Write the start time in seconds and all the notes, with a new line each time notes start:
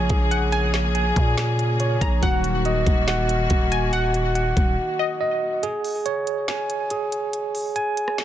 Already playing: C#3 F3 G#3 A#3 C#4 F4 G#4 C#5 F5 G#5
0.09 A#1 G#4, kick, closed hi-hat
0.31 F#5, closed hi-hat
0.52 G#5, closed hi-hat
0.74 snare, clap, closed hi-hat
0.95 G#5, closed hi-hat
1.16 A#2, kick, closed hi-hat
1.38 snare, clap, closed hi-hat
1.59 closed hi-hat
1.80 C#5, closed hi-hat
2.01 A#1 A#5, kick, closed hi-hat
2.22 D#1 D#3 F#3 A#3 D#4 F#4 F#5, kick, closed hi-hat
2.44 closed hi-hat
2.65 D#5, closed hi-hat
2.87 D#1, kick, closed hi-hat
3.08 F#5, snare, clap, closed hi-hat
3.29 closed hi-hat
3.50 D#1 F#4, kick, closed hi-hat
3.72 G#5, closed hi-hat
3.93 F#5, closed hi-hat
4.14 closed hi-hat
4.35 F#5, closed hi-hat
4.57 D#1, kick, closed hi-hat
4.99 D#5
5.21 D#5
5.63 G#4, closed hi-hat
5.84 open hi-hat
6.06 C#5, closed hi-hat
6.27 closed hi-hat
6.48 G#5, snare, clap, closed hi-hat
6.70 closed hi-hat
6.90 G#4, closed hi-hat
7.12 closed hi-hat
7.33 closed hi-hat
7.55 open hi-hat
7.76 G#5, closed hi-hat
7.97 closed hi-hat
8.08 cross-stick
8.18 snare, clap, closed hi-hat